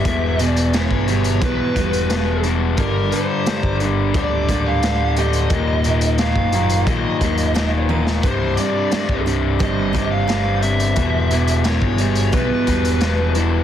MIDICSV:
0, 0, Header, 1, 6, 480
1, 0, Start_track
1, 0, Tempo, 681818
1, 34, Time_signature, 4, 2, 24, 8
1, 9599, End_track
2, 0, Start_track
2, 0, Title_t, "Lead electric guitar"
2, 0, Program_c, 0, 29
2, 0, Note_on_c, 0, 76, 96
2, 318, Note_off_c, 0, 76, 0
2, 318, Note_on_c, 0, 74, 96
2, 524, Note_on_c, 0, 73, 83
2, 536, Note_off_c, 0, 74, 0
2, 1012, Note_off_c, 0, 73, 0
2, 1015, Note_on_c, 0, 71, 74
2, 1695, Note_off_c, 0, 71, 0
2, 1958, Note_on_c, 0, 70, 92
2, 2186, Note_off_c, 0, 70, 0
2, 2189, Note_on_c, 0, 72, 102
2, 2642, Note_off_c, 0, 72, 0
2, 2931, Note_on_c, 0, 74, 92
2, 3284, Note_on_c, 0, 77, 99
2, 3292, Note_off_c, 0, 74, 0
2, 3613, Note_off_c, 0, 77, 0
2, 3653, Note_on_c, 0, 75, 92
2, 4334, Note_off_c, 0, 75, 0
2, 4360, Note_on_c, 0, 77, 91
2, 4834, Note_off_c, 0, 77, 0
2, 4837, Note_on_c, 0, 75, 74
2, 5527, Note_off_c, 0, 75, 0
2, 5796, Note_on_c, 0, 72, 94
2, 6036, Note_off_c, 0, 72, 0
2, 6039, Note_on_c, 0, 74, 106
2, 6488, Note_off_c, 0, 74, 0
2, 6779, Note_on_c, 0, 75, 92
2, 7118, Note_off_c, 0, 75, 0
2, 7121, Note_on_c, 0, 77, 100
2, 7474, Note_off_c, 0, 77, 0
2, 7477, Note_on_c, 0, 76, 94
2, 8204, Note_on_c, 0, 73, 82
2, 8219, Note_off_c, 0, 76, 0
2, 8677, Note_off_c, 0, 73, 0
2, 8680, Note_on_c, 0, 71, 71
2, 9372, Note_off_c, 0, 71, 0
2, 9599, End_track
3, 0, Start_track
3, 0, Title_t, "Steel-string acoustic guitar"
3, 0, Program_c, 1, 25
3, 0, Note_on_c, 1, 55, 66
3, 43, Note_on_c, 1, 40, 73
3, 278, Note_on_c, 1, 47, 71
3, 522, Note_on_c, 1, 52, 74
3, 763, Note_off_c, 1, 55, 0
3, 766, Note_on_c, 1, 55, 63
3, 1006, Note_on_c, 1, 59, 64
3, 1234, Note_off_c, 1, 55, 0
3, 1237, Note_off_c, 1, 40, 0
3, 1242, Note_on_c, 1, 55, 66
3, 1474, Note_off_c, 1, 47, 0
3, 1476, Note_off_c, 1, 59, 0
3, 1484, Note_on_c, 1, 59, 69
3, 1717, Note_off_c, 1, 52, 0
3, 1719, Note_on_c, 1, 64, 69
3, 1956, Note_off_c, 1, 64, 0
3, 1957, Note_off_c, 1, 55, 0
3, 1957, Note_on_c, 1, 43, 70
3, 1958, Note_off_c, 1, 59, 0
3, 2201, Note_on_c, 1, 50, 72
3, 2438, Note_on_c, 1, 55, 73
3, 2677, Note_on_c, 1, 58, 65
3, 3150, Note_off_c, 1, 58, 0
3, 3154, Note_off_c, 1, 43, 0
3, 3158, Note_on_c, 1, 58, 66
3, 3397, Note_off_c, 1, 50, 0
3, 3635, Note_off_c, 1, 55, 0
3, 3642, Note_on_c, 1, 67, 74
3, 3875, Note_off_c, 1, 58, 0
3, 3877, Note_off_c, 1, 67, 0
3, 3881, Note_on_c, 1, 39, 67
3, 4118, Note_on_c, 1, 46, 68
3, 4363, Note_on_c, 1, 51, 71
3, 4596, Note_on_c, 1, 54, 64
3, 4841, Note_on_c, 1, 58, 69
3, 5068, Note_off_c, 1, 54, 0
3, 5076, Note_on_c, 1, 54, 66
3, 5077, Note_off_c, 1, 39, 0
3, 5303, Note_off_c, 1, 58, 0
3, 5311, Note_on_c, 1, 58, 70
3, 5316, Note_off_c, 1, 46, 0
3, 5555, Note_on_c, 1, 63, 65
3, 5558, Note_off_c, 1, 51, 0
3, 5792, Note_off_c, 1, 58, 0
3, 5794, Note_off_c, 1, 63, 0
3, 5795, Note_off_c, 1, 54, 0
3, 5795, Note_on_c, 1, 36, 70
3, 6038, Note_on_c, 1, 43, 70
3, 6269, Note_off_c, 1, 43, 0
3, 6278, Note_on_c, 1, 43, 70
3, 6518, Note_on_c, 1, 48, 66
3, 6754, Note_on_c, 1, 55, 69
3, 6981, Note_off_c, 1, 48, 0
3, 6990, Note_on_c, 1, 48, 66
3, 6995, Note_off_c, 1, 36, 0
3, 7232, Note_off_c, 1, 55, 0
3, 7234, Note_on_c, 1, 55, 69
3, 7477, Note_off_c, 1, 43, 0
3, 7713, Note_off_c, 1, 48, 0
3, 7720, Note_on_c, 1, 40, 73
3, 7961, Note_on_c, 1, 47, 66
3, 8201, Note_on_c, 1, 52, 68
3, 8437, Note_off_c, 1, 55, 0
3, 8440, Note_on_c, 1, 55, 63
3, 8674, Note_on_c, 1, 59, 67
3, 8915, Note_off_c, 1, 55, 0
3, 8919, Note_off_c, 1, 40, 0
3, 8923, Note_on_c, 1, 55, 67
3, 9157, Note_off_c, 1, 59, 0
3, 9160, Note_off_c, 1, 47, 0
3, 9165, Note_on_c, 1, 59, 69
3, 9400, Note_off_c, 1, 52, 0
3, 9403, Note_on_c, 1, 64, 70
3, 9599, Note_off_c, 1, 55, 0
3, 9599, Note_off_c, 1, 59, 0
3, 9599, Note_off_c, 1, 64, 0
3, 9599, End_track
4, 0, Start_track
4, 0, Title_t, "Overdriven electric guitar"
4, 0, Program_c, 2, 29
4, 46, Note_on_c, 2, 40, 85
4, 52, Note_on_c, 2, 47, 88
4, 55, Note_on_c, 2, 52, 99
4, 269, Note_off_c, 2, 40, 0
4, 274, Note_off_c, 2, 47, 0
4, 278, Note_on_c, 2, 40, 82
4, 279, Note_off_c, 2, 52, 0
4, 282, Note_on_c, 2, 47, 83
4, 287, Note_on_c, 2, 52, 94
4, 517, Note_off_c, 2, 47, 0
4, 518, Note_off_c, 2, 40, 0
4, 520, Note_off_c, 2, 52, 0
4, 526, Note_on_c, 2, 40, 80
4, 526, Note_on_c, 2, 47, 92
4, 528, Note_on_c, 2, 52, 104
4, 754, Note_off_c, 2, 40, 0
4, 757, Note_off_c, 2, 47, 0
4, 761, Note_off_c, 2, 52, 0
4, 763, Note_on_c, 2, 40, 78
4, 765, Note_on_c, 2, 47, 88
4, 770, Note_on_c, 2, 52, 90
4, 988, Note_off_c, 2, 40, 0
4, 991, Note_off_c, 2, 47, 0
4, 996, Note_off_c, 2, 52, 0
4, 996, Note_on_c, 2, 40, 84
4, 999, Note_on_c, 2, 47, 82
4, 1004, Note_on_c, 2, 52, 94
4, 1231, Note_off_c, 2, 40, 0
4, 1235, Note_off_c, 2, 47, 0
4, 1238, Note_off_c, 2, 52, 0
4, 1240, Note_on_c, 2, 40, 83
4, 1243, Note_on_c, 2, 47, 90
4, 1246, Note_on_c, 2, 52, 103
4, 1469, Note_off_c, 2, 40, 0
4, 1472, Note_off_c, 2, 47, 0
4, 1474, Note_off_c, 2, 52, 0
4, 1478, Note_on_c, 2, 40, 82
4, 1481, Note_on_c, 2, 47, 93
4, 1482, Note_on_c, 2, 52, 91
4, 1708, Note_off_c, 2, 40, 0
4, 1714, Note_off_c, 2, 47, 0
4, 1716, Note_off_c, 2, 52, 0
4, 1717, Note_on_c, 2, 40, 87
4, 1723, Note_on_c, 2, 47, 85
4, 1725, Note_on_c, 2, 52, 92
4, 1940, Note_off_c, 2, 40, 0
4, 1943, Note_off_c, 2, 47, 0
4, 1944, Note_off_c, 2, 52, 0
4, 1954, Note_on_c, 2, 43, 89
4, 1957, Note_on_c, 2, 50, 92
4, 1961, Note_on_c, 2, 55, 100
4, 2192, Note_off_c, 2, 43, 0
4, 2196, Note_off_c, 2, 50, 0
4, 2200, Note_off_c, 2, 55, 0
4, 2200, Note_on_c, 2, 43, 82
4, 2205, Note_on_c, 2, 50, 82
4, 2209, Note_on_c, 2, 55, 97
4, 2436, Note_off_c, 2, 43, 0
4, 2442, Note_off_c, 2, 50, 0
4, 2444, Note_off_c, 2, 55, 0
4, 2444, Note_on_c, 2, 43, 84
4, 2451, Note_on_c, 2, 50, 96
4, 2453, Note_on_c, 2, 55, 110
4, 2679, Note_off_c, 2, 43, 0
4, 2681, Note_off_c, 2, 50, 0
4, 2686, Note_off_c, 2, 55, 0
4, 2687, Note_on_c, 2, 43, 88
4, 2690, Note_on_c, 2, 50, 85
4, 2694, Note_on_c, 2, 55, 87
4, 2918, Note_off_c, 2, 43, 0
4, 2920, Note_off_c, 2, 50, 0
4, 2924, Note_off_c, 2, 55, 0
4, 2926, Note_on_c, 2, 43, 83
4, 2929, Note_on_c, 2, 50, 85
4, 2932, Note_on_c, 2, 55, 82
4, 3158, Note_off_c, 2, 43, 0
4, 3163, Note_off_c, 2, 50, 0
4, 3163, Note_off_c, 2, 55, 0
4, 3167, Note_on_c, 2, 43, 92
4, 3171, Note_on_c, 2, 50, 98
4, 3172, Note_on_c, 2, 55, 102
4, 3397, Note_off_c, 2, 43, 0
4, 3399, Note_off_c, 2, 50, 0
4, 3403, Note_off_c, 2, 55, 0
4, 3406, Note_on_c, 2, 43, 81
4, 3408, Note_on_c, 2, 50, 89
4, 3412, Note_on_c, 2, 55, 89
4, 3639, Note_off_c, 2, 43, 0
4, 3639, Note_off_c, 2, 50, 0
4, 3644, Note_off_c, 2, 55, 0
4, 3647, Note_on_c, 2, 43, 76
4, 3648, Note_on_c, 2, 50, 82
4, 3652, Note_on_c, 2, 55, 82
4, 3865, Note_off_c, 2, 43, 0
4, 3865, Note_off_c, 2, 50, 0
4, 3868, Note_off_c, 2, 55, 0
4, 3885, Note_on_c, 2, 39, 80
4, 3885, Note_on_c, 2, 46, 90
4, 3890, Note_on_c, 2, 51, 97
4, 4116, Note_off_c, 2, 39, 0
4, 4118, Note_off_c, 2, 46, 0
4, 4123, Note_off_c, 2, 51, 0
4, 4125, Note_on_c, 2, 39, 85
4, 4127, Note_on_c, 2, 46, 88
4, 4131, Note_on_c, 2, 51, 93
4, 4353, Note_off_c, 2, 39, 0
4, 4356, Note_off_c, 2, 46, 0
4, 4357, Note_off_c, 2, 51, 0
4, 4361, Note_on_c, 2, 39, 89
4, 4364, Note_on_c, 2, 46, 98
4, 4365, Note_on_c, 2, 51, 98
4, 4595, Note_off_c, 2, 39, 0
4, 4599, Note_off_c, 2, 46, 0
4, 4603, Note_off_c, 2, 51, 0
4, 4603, Note_on_c, 2, 39, 80
4, 4607, Note_on_c, 2, 46, 89
4, 4611, Note_on_c, 2, 51, 94
4, 4833, Note_off_c, 2, 39, 0
4, 4835, Note_off_c, 2, 46, 0
4, 4837, Note_off_c, 2, 51, 0
4, 4841, Note_on_c, 2, 39, 74
4, 4843, Note_on_c, 2, 46, 80
4, 4845, Note_on_c, 2, 51, 96
4, 5073, Note_off_c, 2, 39, 0
4, 5076, Note_off_c, 2, 46, 0
4, 5077, Note_off_c, 2, 51, 0
4, 5081, Note_on_c, 2, 39, 88
4, 5084, Note_on_c, 2, 46, 91
4, 5085, Note_on_c, 2, 51, 99
4, 5313, Note_off_c, 2, 39, 0
4, 5313, Note_off_c, 2, 46, 0
4, 5317, Note_off_c, 2, 51, 0
4, 5321, Note_on_c, 2, 39, 71
4, 5322, Note_on_c, 2, 46, 89
4, 5325, Note_on_c, 2, 51, 89
4, 5552, Note_off_c, 2, 39, 0
4, 5556, Note_off_c, 2, 51, 0
4, 5557, Note_off_c, 2, 46, 0
4, 5560, Note_on_c, 2, 39, 77
4, 5564, Note_on_c, 2, 51, 90
4, 5565, Note_on_c, 2, 46, 75
4, 5782, Note_off_c, 2, 39, 0
4, 5784, Note_off_c, 2, 51, 0
4, 5785, Note_off_c, 2, 46, 0
4, 5803, Note_on_c, 2, 36, 80
4, 5806, Note_on_c, 2, 43, 94
4, 5810, Note_on_c, 2, 48, 100
4, 6036, Note_off_c, 2, 36, 0
4, 6041, Note_off_c, 2, 43, 0
4, 6044, Note_off_c, 2, 48, 0
4, 6045, Note_on_c, 2, 36, 84
4, 6049, Note_on_c, 2, 43, 94
4, 6053, Note_on_c, 2, 48, 87
4, 6273, Note_off_c, 2, 36, 0
4, 6278, Note_off_c, 2, 43, 0
4, 6278, Note_off_c, 2, 48, 0
4, 6281, Note_on_c, 2, 36, 84
4, 6286, Note_on_c, 2, 43, 94
4, 6286, Note_on_c, 2, 48, 101
4, 6516, Note_off_c, 2, 36, 0
4, 6517, Note_off_c, 2, 43, 0
4, 6519, Note_off_c, 2, 48, 0
4, 6524, Note_on_c, 2, 36, 81
4, 6525, Note_on_c, 2, 43, 76
4, 6527, Note_on_c, 2, 48, 95
4, 6754, Note_off_c, 2, 36, 0
4, 6756, Note_off_c, 2, 43, 0
4, 6760, Note_off_c, 2, 48, 0
4, 6763, Note_on_c, 2, 36, 83
4, 6764, Note_on_c, 2, 43, 78
4, 6769, Note_on_c, 2, 48, 89
4, 6993, Note_off_c, 2, 36, 0
4, 6996, Note_off_c, 2, 43, 0
4, 7001, Note_off_c, 2, 48, 0
4, 7001, Note_on_c, 2, 36, 93
4, 7004, Note_on_c, 2, 43, 92
4, 7010, Note_on_c, 2, 48, 101
4, 7230, Note_off_c, 2, 36, 0
4, 7236, Note_off_c, 2, 43, 0
4, 7237, Note_off_c, 2, 48, 0
4, 7239, Note_on_c, 2, 36, 78
4, 7245, Note_on_c, 2, 43, 84
4, 7245, Note_on_c, 2, 48, 92
4, 7475, Note_off_c, 2, 36, 0
4, 7478, Note_off_c, 2, 43, 0
4, 7480, Note_off_c, 2, 48, 0
4, 7483, Note_on_c, 2, 36, 83
4, 7487, Note_on_c, 2, 43, 81
4, 7488, Note_on_c, 2, 48, 86
4, 7705, Note_off_c, 2, 36, 0
4, 7707, Note_off_c, 2, 43, 0
4, 7707, Note_off_c, 2, 48, 0
4, 7723, Note_on_c, 2, 40, 87
4, 7726, Note_on_c, 2, 47, 85
4, 7730, Note_on_c, 2, 52, 106
4, 7960, Note_off_c, 2, 40, 0
4, 7961, Note_off_c, 2, 47, 0
4, 7966, Note_off_c, 2, 52, 0
4, 7968, Note_on_c, 2, 40, 86
4, 7970, Note_on_c, 2, 47, 84
4, 7975, Note_on_c, 2, 52, 89
4, 8197, Note_off_c, 2, 40, 0
4, 8202, Note_off_c, 2, 47, 0
4, 8203, Note_off_c, 2, 52, 0
4, 8206, Note_on_c, 2, 40, 98
4, 8211, Note_on_c, 2, 47, 88
4, 8212, Note_on_c, 2, 52, 93
4, 8442, Note_off_c, 2, 40, 0
4, 8445, Note_off_c, 2, 47, 0
4, 8447, Note_off_c, 2, 52, 0
4, 8450, Note_on_c, 2, 40, 71
4, 8454, Note_on_c, 2, 47, 87
4, 8456, Note_on_c, 2, 52, 85
4, 8678, Note_off_c, 2, 40, 0
4, 8682, Note_off_c, 2, 47, 0
4, 8684, Note_off_c, 2, 52, 0
4, 8687, Note_on_c, 2, 40, 83
4, 8690, Note_on_c, 2, 47, 82
4, 8692, Note_on_c, 2, 52, 87
4, 8921, Note_off_c, 2, 40, 0
4, 8925, Note_off_c, 2, 47, 0
4, 8929, Note_off_c, 2, 52, 0
4, 8929, Note_on_c, 2, 40, 90
4, 8933, Note_on_c, 2, 47, 89
4, 8938, Note_on_c, 2, 52, 98
4, 9161, Note_off_c, 2, 40, 0
4, 9166, Note_off_c, 2, 47, 0
4, 9166, Note_off_c, 2, 52, 0
4, 9170, Note_on_c, 2, 40, 86
4, 9174, Note_on_c, 2, 47, 83
4, 9174, Note_on_c, 2, 52, 84
4, 9402, Note_off_c, 2, 40, 0
4, 9405, Note_off_c, 2, 47, 0
4, 9408, Note_off_c, 2, 52, 0
4, 9410, Note_on_c, 2, 40, 83
4, 9413, Note_on_c, 2, 47, 88
4, 9416, Note_on_c, 2, 52, 83
4, 9599, Note_off_c, 2, 40, 0
4, 9599, Note_off_c, 2, 47, 0
4, 9599, Note_off_c, 2, 52, 0
4, 9599, End_track
5, 0, Start_track
5, 0, Title_t, "Picked electric bass"
5, 0, Program_c, 3, 34
5, 36, Note_on_c, 3, 28, 91
5, 606, Note_off_c, 3, 28, 0
5, 635, Note_on_c, 3, 31, 79
5, 973, Note_off_c, 3, 31, 0
5, 997, Note_on_c, 3, 35, 89
5, 1108, Note_off_c, 3, 35, 0
5, 1238, Note_on_c, 3, 28, 94
5, 1927, Note_off_c, 3, 28, 0
5, 1956, Note_on_c, 3, 31, 94
5, 2180, Note_off_c, 3, 31, 0
5, 2560, Note_on_c, 3, 31, 82
5, 2895, Note_off_c, 3, 31, 0
5, 2918, Note_on_c, 3, 26, 92
5, 3141, Note_off_c, 3, 26, 0
5, 3157, Note_on_c, 3, 26, 85
5, 3847, Note_off_c, 3, 26, 0
5, 3875, Note_on_c, 3, 27, 92
5, 4446, Note_off_c, 3, 27, 0
5, 4473, Note_on_c, 3, 30, 80
5, 4812, Note_off_c, 3, 30, 0
5, 4836, Note_on_c, 3, 34, 89
5, 4947, Note_off_c, 3, 34, 0
5, 5076, Note_on_c, 3, 27, 87
5, 5767, Note_off_c, 3, 27, 0
5, 5797, Note_on_c, 3, 24, 92
5, 6021, Note_off_c, 3, 24, 0
5, 6399, Note_on_c, 3, 24, 79
5, 6735, Note_off_c, 3, 24, 0
5, 6761, Note_on_c, 3, 31, 90
5, 6984, Note_off_c, 3, 31, 0
5, 7000, Note_on_c, 3, 31, 88
5, 7690, Note_off_c, 3, 31, 0
5, 7717, Note_on_c, 3, 28, 96
5, 8289, Note_off_c, 3, 28, 0
5, 8318, Note_on_c, 3, 31, 78
5, 8657, Note_off_c, 3, 31, 0
5, 8683, Note_on_c, 3, 35, 93
5, 8793, Note_off_c, 3, 35, 0
5, 8919, Note_on_c, 3, 28, 92
5, 9599, Note_off_c, 3, 28, 0
5, 9599, End_track
6, 0, Start_track
6, 0, Title_t, "Drums"
6, 36, Note_on_c, 9, 36, 100
6, 36, Note_on_c, 9, 42, 62
6, 106, Note_off_c, 9, 36, 0
6, 106, Note_off_c, 9, 42, 0
6, 276, Note_on_c, 9, 42, 59
6, 347, Note_off_c, 9, 42, 0
6, 398, Note_on_c, 9, 42, 61
6, 468, Note_off_c, 9, 42, 0
6, 517, Note_on_c, 9, 42, 58
6, 524, Note_on_c, 9, 38, 108
6, 587, Note_off_c, 9, 42, 0
6, 594, Note_off_c, 9, 38, 0
6, 638, Note_on_c, 9, 36, 80
6, 708, Note_off_c, 9, 36, 0
6, 759, Note_on_c, 9, 42, 58
6, 829, Note_off_c, 9, 42, 0
6, 876, Note_on_c, 9, 42, 55
6, 946, Note_off_c, 9, 42, 0
6, 996, Note_on_c, 9, 42, 58
6, 997, Note_on_c, 9, 36, 107
6, 1067, Note_off_c, 9, 36, 0
6, 1067, Note_off_c, 9, 42, 0
6, 1239, Note_on_c, 9, 36, 75
6, 1242, Note_on_c, 9, 42, 62
6, 1309, Note_off_c, 9, 36, 0
6, 1312, Note_off_c, 9, 42, 0
6, 1360, Note_on_c, 9, 42, 57
6, 1431, Note_off_c, 9, 42, 0
6, 1477, Note_on_c, 9, 42, 57
6, 1484, Note_on_c, 9, 38, 106
6, 1548, Note_off_c, 9, 42, 0
6, 1555, Note_off_c, 9, 38, 0
6, 1714, Note_on_c, 9, 42, 57
6, 1784, Note_off_c, 9, 42, 0
6, 1953, Note_on_c, 9, 42, 57
6, 1956, Note_on_c, 9, 36, 103
6, 2023, Note_off_c, 9, 42, 0
6, 2027, Note_off_c, 9, 36, 0
6, 2197, Note_on_c, 9, 42, 61
6, 2268, Note_off_c, 9, 42, 0
6, 2438, Note_on_c, 9, 42, 61
6, 2445, Note_on_c, 9, 38, 104
6, 2508, Note_off_c, 9, 42, 0
6, 2515, Note_off_c, 9, 38, 0
6, 2558, Note_on_c, 9, 36, 80
6, 2628, Note_off_c, 9, 36, 0
6, 2677, Note_on_c, 9, 42, 56
6, 2747, Note_off_c, 9, 42, 0
6, 2917, Note_on_c, 9, 36, 107
6, 2917, Note_on_c, 9, 42, 58
6, 2987, Note_off_c, 9, 36, 0
6, 2987, Note_off_c, 9, 42, 0
6, 3158, Note_on_c, 9, 36, 77
6, 3160, Note_on_c, 9, 42, 66
6, 3229, Note_off_c, 9, 36, 0
6, 3230, Note_off_c, 9, 42, 0
6, 3398, Note_on_c, 9, 42, 64
6, 3405, Note_on_c, 9, 38, 99
6, 3468, Note_off_c, 9, 42, 0
6, 3476, Note_off_c, 9, 38, 0
6, 3636, Note_on_c, 9, 42, 58
6, 3707, Note_off_c, 9, 42, 0
6, 3753, Note_on_c, 9, 42, 60
6, 3823, Note_off_c, 9, 42, 0
6, 3872, Note_on_c, 9, 42, 64
6, 3874, Note_on_c, 9, 36, 101
6, 3942, Note_off_c, 9, 42, 0
6, 3945, Note_off_c, 9, 36, 0
6, 4112, Note_on_c, 9, 42, 64
6, 4183, Note_off_c, 9, 42, 0
6, 4232, Note_on_c, 9, 42, 63
6, 4302, Note_off_c, 9, 42, 0
6, 4351, Note_on_c, 9, 42, 65
6, 4358, Note_on_c, 9, 38, 102
6, 4421, Note_off_c, 9, 42, 0
6, 4428, Note_off_c, 9, 38, 0
6, 4474, Note_on_c, 9, 36, 79
6, 4544, Note_off_c, 9, 36, 0
6, 4593, Note_on_c, 9, 42, 60
6, 4664, Note_off_c, 9, 42, 0
6, 4714, Note_on_c, 9, 42, 64
6, 4784, Note_off_c, 9, 42, 0
6, 4835, Note_on_c, 9, 36, 104
6, 4835, Note_on_c, 9, 42, 59
6, 4905, Note_off_c, 9, 36, 0
6, 4905, Note_off_c, 9, 42, 0
6, 5075, Note_on_c, 9, 36, 73
6, 5076, Note_on_c, 9, 42, 58
6, 5146, Note_off_c, 9, 36, 0
6, 5146, Note_off_c, 9, 42, 0
6, 5193, Note_on_c, 9, 42, 58
6, 5263, Note_off_c, 9, 42, 0
6, 5317, Note_on_c, 9, 42, 57
6, 5324, Note_on_c, 9, 38, 102
6, 5387, Note_off_c, 9, 42, 0
6, 5394, Note_off_c, 9, 38, 0
6, 5554, Note_on_c, 9, 48, 56
6, 5625, Note_off_c, 9, 48, 0
6, 5680, Note_on_c, 9, 38, 77
6, 5751, Note_off_c, 9, 38, 0
6, 5796, Note_on_c, 9, 42, 53
6, 5797, Note_on_c, 9, 36, 111
6, 5867, Note_off_c, 9, 36, 0
6, 5867, Note_off_c, 9, 42, 0
6, 6035, Note_on_c, 9, 42, 59
6, 6105, Note_off_c, 9, 42, 0
6, 6276, Note_on_c, 9, 42, 52
6, 6283, Note_on_c, 9, 38, 105
6, 6347, Note_off_c, 9, 42, 0
6, 6354, Note_off_c, 9, 38, 0
6, 6399, Note_on_c, 9, 36, 80
6, 6469, Note_off_c, 9, 36, 0
6, 6526, Note_on_c, 9, 42, 56
6, 6597, Note_off_c, 9, 42, 0
6, 6760, Note_on_c, 9, 36, 103
6, 6763, Note_on_c, 9, 42, 57
6, 6831, Note_off_c, 9, 36, 0
6, 6833, Note_off_c, 9, 42, 0
6, 7002, Note_on_c, 9, 36, 79
6, 7008, Note_on_c, 9, 42, 61
6, 7073, Note_off_c, 9, 36, 0
6, 7078, Note_off_c, 9, 42, 0
6, 7244, Note_on_c, 9, 42, 60
6, 7251, Note_on_c, 9, 38, 106
6, 7314, Note_off_c, 9, 42, 0
6, 7321, Note_off_c, 9, 38, 0
6, 7480, Note_on_c, 9, 42, 62
6, 7551, Note_off_c, 9, 42, 0
6, 7602, Note_on_c, 9, 42, 62
6, 7672, Note_off_c, 9, 42, 0
6, 7715, Note_on_c, 9, 42, 62
6, 7720, Note_on_c, 9, 36, 104
6, 7785, Note_off_c, 9, 42, 0
6, 7790, Note_off_c, 9, 36, 0
6, 7960, Note_on_c, 9, 42, 61
6, 8031, Note_off_c, 9, 42, 0
6, 8079, Note_on_c, 9, 42, 63
6, 8149, Note_off_c, 9, 42, 0
6, 8196, Note_on_c, 9, 42, 64
6, 8203, Note_on_c, 9, 38, 110
6, 8267, Note_off_c, 9, 42, 0
6, 8274, Note_off_c, 9, 38, 0
6, 8319, Note_on_c, 9, 36, 82
6, 8389, Note_off_c, 9, 36, 0
6, 8436, Note_on_c, 9, 42, 63
6, 8506, Note_off_c, 9, 42, 0
6, 8556, Note_on_c, 9, 42, 60
6, 8626, Note_off_c, 9, 42, 0
6, 8677, Note_on_c, 9, 42, 60
6, 8681, Note_on_c, 9, 36, 104
6, 8747, Note_off_c, 9, 42, 0
6, 8751, Note_off_c, 9, 36, 0
6, 8921, Note_on_c, 9, 42, 67
6, 8922, Note_on_c, 9, 36, 74
6, 8991, Note_off_c, 9, 42, 0
6, 8992, Note_off_c, 9, 36, 0
6, 9045, Note_on_c, 9, 42, 59
6, 9115, Note_off_c, 9, 42, 0
6, 9156, Note_on_c, 9, 42, 61
6, 9163, Note_on_c, 9, 38, 105
6, 9227, Note_off_c, 9, 42, 0
6, 9234, Note_off_c, 9, 38, 0
6, 9398, Note_on_c, 9, 42, 57
6, 9468, Note_off_c, 9, 42, 0
6, 9599, End_track
0, 0, End_of_file